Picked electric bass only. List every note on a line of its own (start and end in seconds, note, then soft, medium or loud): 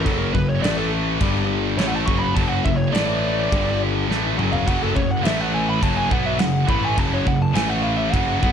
0.06 0.33 F#1 loud
0.34 0.61 F#1 medium
0.63 1.17 A1 loud
1.21 1.75 G1 medium
1.77 2.05 A1 medium
2.07 2.34 F#1 medium
2.36 2.63 F#1 medium
2.66 2.92 F#1 medium
2.94 3.48 A1 medium
3.52 4.06 G1 loud
4.09 4.36 A1 medium
4.39 4.66 F#1 medium
4.67 4.94 F#1 medium
4.96 5.23 F#1 medium
5.25 5.79 A1 loud
5.82 6.09 F#1 medium
6.11 6.38 B1 loud
6.40 6.67 F#1 medium
6.68 6.96 A1 medium
6.98 7.25 F#1 loud
7.27 7.54 F#1 medium
7.54 8.09 A1 loud
8.13 8.40 F#1 medium
8.43 8.52 B1 medium